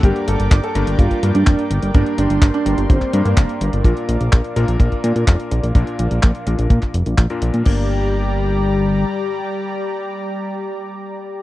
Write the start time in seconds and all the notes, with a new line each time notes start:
0.03 G1 G2 A#3 D4 G4 A#4 D5 G5 D6, kick, closed hi-hat
0.16 closed hi-hat
0.28 G1 A4, closed hi-hat
0.40 G1, closed hi-hat
0.51 G1, kick, clap, closed hi-hat
0.64 A4, closed hi-hat
0.75 G1 G2 A#3 D4 G4 A#4, closed hi-hat
0.87 G1, closed hi-hat
0.99 G1 F4, kick, closed hi-hat
1.11 kick, closed hi-hat
1.23 G2 A#3 D4 G4 A#4, closed hi-hat
1.35 G2 D4, closed hi-hat
1.47 F1, kick, clap, closed hi-hat
1.59 closed hi-hat
1.71 G1, closed hi-hat
1.83 G1, closed hi-hat
1.94 G1 G2 A#3 D4 G4 A#4 C6, kick, closed hi-hat
2.06 closed hi-hat
2.18 G1 D4, closed hi-hat
2.30 G1, closed hi-hat
2.42 G1, kick, clap, closed hi-hat
2.54 D4, closed hi-hat
2.66 G1 G2 A#3 D4 G4 A#4, closed hi-hat
2.78 G1, closed hi-hat
2.90 G1 C4, kick, closed hi-hat
3.01 kick, clap, closed hi-hat
3.13 G2 A#3 D4 G4 A#4, closed hi-hat
3.25 G2 A#3, closed hi-hat
3.37 F1, kick, clap, closed hi-hat
3.49 closed hi-hat
3.61 G1, closed hi-hat
3.73 G1, closed hi-hat
3.84 A#1 A#2 A#3 D4 F4 A#4 F5 D6, kick, closed hi-hat
3.97 closed hi-hat
4.09 A#1, closed hi-hat
4.21 A#1, closed hi-hat
4.33 A#1, kick, clap, closed hi-hat
4.44 closed hi-hat
4.56 A#1 A#2 A#3 D4 F4 A#4, closed hi-hat
4.68 A#1, closed hi-hat
4.80 A#1, kick, closed hi-hat
4.92 kick, closed hi-hat
5.04 A#2 A#3 D4 F4 A#4, closed hi-hat
5.16 A#2, closed hi-hat
5.27 F1, kick, clap, closed hi-hat
5.40 closed hi-hat
5.51 A#1, closed hi-hat
5.63 A#1, closed hi-hat
5.75 A#1 A#2 A#3 D4 F4 A#4, kick, closed hi-hat
5.87 closed hi-hat
5.99 A#1, closed hi-hat
6.11 A#1, closed hi-hat
6.23 A#1, kick, clap, closed hi-hat
6.35 closed hi-hat
6.47 A#1 A#2 A#3 D4 F4 A#4, closed hi-hat
6.59 A#1, closed hi-hat
6.70 A#2, kick, closed hi-hat
6.82 kick, clap, closed hi-hat
6.94 F1, closed hi-hat
7.06 A#1, closed hi-hat
7.18 A#1, kick, clap, closed hi-hat
7.30 A#2 A#3 D4 F4 A#4, closed hi-hat
7.42 A#1, closed hi-hat
7.54 A#2, closed hi-hat
7.66 G1 G3 A#3 D4 G4 A#4 D5 A#5, kick, crash